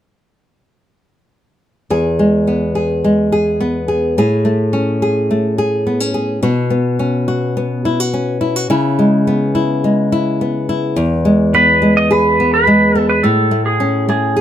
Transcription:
1.90 E2 G#4
2.19 G#3
2.47 B3
2.75 G#4
3.04 G#3
3.32 G#4
3.60 B3
3.88 G#4
4.18 A2 G#4
4.45 A3
4.73 C#4
5.02 G#4
5.31 A3
5.58 G#4
5.87 B3
6.00 C#4
6.14 G#4
6.43 B2 F#4
6.70 B3
6.99 C#4
7.28 F#4
7.57 B3
7.85 E4
8.00 F#4
8.13 C#4
8.41 E4
8.56 F#4
8.70 C#3 E4
8.99 G#3
9.27 B3
9.55 E4
9.84 G#3
10.12 E4
10.41 B3
10.69 E4
10.96 E2
11.25 G#3
11.54 B3 B4
11.82 G#3
11.97 D#5
12.11 G#4 B4
12.40 B3
12.54 B4
12.67 G#3
12.95 B3
13.09 B4
13.23 A2 A4
13.51 A3
13.66 G#4
13.80 C#4
14.09 A3 G#4
14.37 G#4

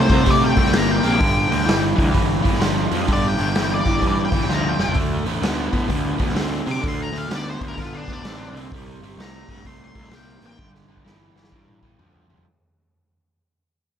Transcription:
0.00 C5
0.09 C2 C3 A3, kick, open hi-hat
0.25 C3 A3, kick, open hi-hat
0.30 D5
0.44 G5
0.57 C2 C3 A3, kick, open hi-hat
0.65 snare
0.72 G1 C3 A#3, snare, open hi-hat
0.77 A#5
0.91 G5
1.03 A#1 C3 A#3, open hi-hat
1.19 G1 G2 D3, kick, open hi-hat
1.49 D2 G2 D3, open hi-hat
1.65 G1 G2 E3, open hi-hat
1.69 snare
1.96 D2 G2 E3, kick
2.00 open hi-hat
2.11 G1 G2 E3, kick, open hi-hat
2.42 G1 G2 E3, kick, open hi-hat
2.53 snare
2.59 G1 G2 F3, snare, open hi-hat
2.91 F2 G2 F3, open hi-hat
3.08 G1 G2 D3, kick, open hi-hat
3.13 D5
3.28 G5
3.38 G1 G2 D3, open hi-hat
3.55 G1 G2 E3, snare, open hi-hat
3.74 D5
3.86 G1 G2 E3, kick, open hi-hat
4.01 G2 E3, kick, open hi-hat
4.08 D5
4.25 G5
4.32 G1 G2 E3, kick, open hi-hat
4.41 snare
4.48 D2 G2 F3, snare
4.54 A#5
4.64 mid tom
4.69 G5
4.78 F1 G2 F3, snare
4.88 floor tom
4.94 D2 D3 A3, kick, open hi-hat
5.25 A1 D3 A3, open hi-hat
5.41 D2 D3 B3, snare, open hi-hat
5.73 A2 D3 B3, kick, open hi-hat
5.89 D2 D3 B3, kick, open hi-hat
6.19 D2 D3 B3, kick, open hi-hat
6.29 snare
6.35 D2 D3 C4, snare, open hi-hat
6.66 C3 D3 C4, open hi-hat
6.71 D6
6.81 D2 D3 A3, kick, open hi-hat
6.88 C6
7.02 A#5
7.13 D2 D3 A3, open hi-hat
7.18 F5
7.28 D2 D3 B3, snare, open hi-hat
7.35 D5
7.49 C5
7.61 D2 D3 B3, kick, open hi-hat
7.68 A#4
7.77 D3 B3, kick, open hi-hat
7.82 F4
7.97 D4
8.08 D2 D3 B3, kick, open hi-hat
8.13 D4
8.23 A1, snare, open hi-hat
8.27 D3 C4
8.52 C2
8.57 D3 C4, open hi-hat
8.72 C2 C3 G3, kick, open hi-hat
9.01 G1 C3 G3, open hi-hat
9.17 C2 C3 A3, snare, open hi-hat
9.21 A#5
9.48 G2 C3 A3, kick, open hi-hat
9.65 C2 C3 A3 C6, kick, open hi-hat
9.84 C6
9.95 C2 C3 A3, kick, open hi-hat
10.04 snare
10.11 C2 C3 A#3, snare, open hi-hat
10.15 G5
10.42 A1 C3 A#3, open hi-hat
10.46 G5
10.57 G1 G2 D3, kick, high tom
10.75 snare
10.88 G1 G2 D3
10.97 kick
11.04 G1 G2 E3, snare
11.36 G1 G2 E3, snare
11.44 snare
11.52 G2 E3, kick
11.68 mid tom
11.82 G1 G2 E3, kick
11.99 D2 G2 F3, floor tom
12.15 floor tom
12.28 F1 G2 F3, floor tom
12.38 floor tom

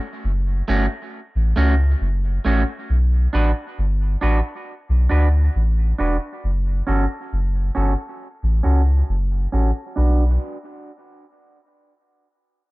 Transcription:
0.24 F#1
0.68 G1 A3 C#4 F#4
1.35 A1
1.56 C#2 A3 C#4 F#4
2.01 F#1
2.45 A1 A3 C#4 F#4
2.90 B1
3.33 A1 D4 F#4 B4
3.78 G1
4.21 A1 D4 F#4 B4
4.89 B1
5.09 D2 D4 F#4 B4
5.56 A1
5.98 E1 D4 F#4 B4
6.44 F#1
6.87 G1 C#4 F#4 A4
7.33 F#1
7.75 G1 C#4 F#4 A4
8.43 A1
8.63 C#2 C#4 F#4 A4
9.09 F#1
9.52 A1 C#4 F#4 A4
9.96 B1 D4 F#4 B4

